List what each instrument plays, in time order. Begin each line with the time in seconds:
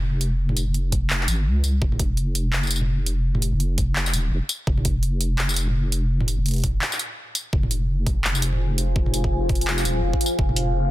Already playing: wobble bass F1
0.21 closed hi-hat
0.49 mid tom
0.57 closed hi-hat, tambourine
0.67 wobble bass F1
0.74 closed hi-hat
0.92 kick, closed hi-hat
1.10 clap
1.21 clap
1.28 wobble bass G#1, closed hi-hat, tambourine
1.46 wobble bass C#2
1.64 closed hi-hat, tambourine
1.82 wobble bass F1, kick
1.92 mid tom
1.99 kick, closed hi-hat
2.17 closed hi-hat
2.35 closed hi-hat
2.53 clap
2.63 tambourine
2.67 closed hi-hat, tambourine
2.71 tambourine
2.76 tambourine
2.81 mid tom
3.06 closed hi-hat
3.35 mid tom
3.42 closed hi-hat
3.53 wobble bass F1
3.60 closed hi-hat
3.78 kick, closed hi-hat
3.96 clap
4.06 clap, tambourine
4.13 wobble bass D#1, closed hi-hat, tambourine
4.31 wobble bass F1
4.49 closed hi-hat, tambourine
4.67 wobble bass F1, kick
4.78 mid tom
4.85 kick, closed hi-hat
5.03 closed hi-hat
5.21 closed hi-hat
5.38 clap
5.49 tambourine
5.54 closed hi-hat, tambourine
5.56 tambourine
5.67 mid tom
5.92 closed hi-hat
6.21 mid tom
6.28 closed hi-hat, tambourine
6.38 wobble bass F1
6.46 closed hi-hat
6.48 closed hi-hat
6.51 closed hi-hat
6.54 closed hi-hat
6.56 closed hi-hat
6.58 closed hi-hat
6.60 closed hi-hat
6.62 closed hi-hat
6.64 kick, closed hi-hat, mid tom
6.82 clap
6.92 clap, tambourine
6.99 closed hi-hat, tambourine
7.35 closed hi-hat, tambourine
7.53 wobble bass F1, ambient pad F4 C5 F5 G#5, kick
7.63 mid tom
7.71 closed hi-hat
8.07 kick, closed hi-hat, mid tom
8.24 clap
8.35 tambourine
8.42 closed hi-hat, tambourine
8.53 mid tom
8.78 closed hi-hat
8.96 kick
9.06 mid tom
9.14 closed hi-hat, tambourine
9.24 wobble bass F1, kick
9.49 kick, closed hi-hat, mid tom
9.55 closed hi-hat
9.61 closed hi-hat
9.67 clap
9.78 clap, tambourine
9.85 wobble bass D#1, closed hi-hat, tambourine
10.03 wobble bass F1
10.13 kick
10.21 closed hi-hat
10.26 tambourine
10.39 wobble bass F1, ambient pad D#4 A#4 F#5, kick
10.49 mid tom
10.56 closed hi-hat